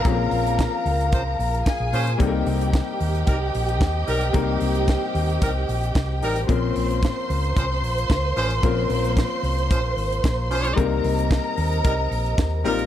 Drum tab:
HH |x-oxx-oxx-oxx-ox|x-oxx-oxx-oxx-ox|x-oxx-oxx-oxx-ox|x-oxx-oxx-oxx-ox|
SD |----o-------o---|----o-------o---|----o-------o---|----o-------o---|
BD |o---o---o---o---|o---o---o---o---|o---o---o---o---|o---o---o---o---|

HH |x-oxx-oxx-oxx-ox|x-oxx-oxx-oxx-ox|
SD |----o-------o---|----o-------o---|
BD |o---o---o---o---|o---o---o---o---|